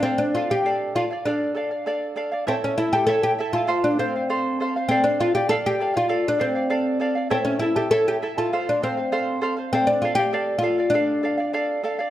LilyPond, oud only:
\new Staff \with { instrumentName = "Oud" } { \time 2/4 \key d \minor \tempo 4 = 99 c'16 d'16 f'16 g'8. f'8 | d'4. r8 | c'16 cis'16 e'16 g'16 a'16 g'8 f'16~ | f'16 d'16 c'4 r8 |
c'16 d'16 f'16 g'16 a'16 g'8 f'16~ | f'16 d'16 c'4 r8 | c'16 cis'16 e'16 g'16 a'16 g'8 f'16~ | f'16 d'16 c'4 r8 |
c'16 d'16 f'16 g'8. f'8 | d'4. r8 | }